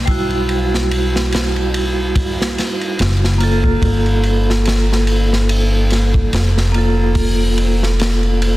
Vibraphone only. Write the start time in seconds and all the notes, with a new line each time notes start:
0.06 G3 E4
0.11 F#4
3.38 A#3 F4
3.44 A4
6.72 A#3 F4
6.78 A4